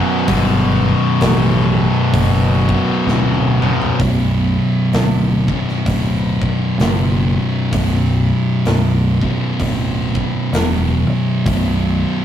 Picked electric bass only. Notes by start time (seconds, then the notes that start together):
0.28 G1
1.21 A1
2.13 F#1
3.07 D1
3.99 B0
4.93 D1
5.86 D1
6.78 F#1
7.72 B0
8.66 B0
9.60 D1
10.53 E1
11.46 B0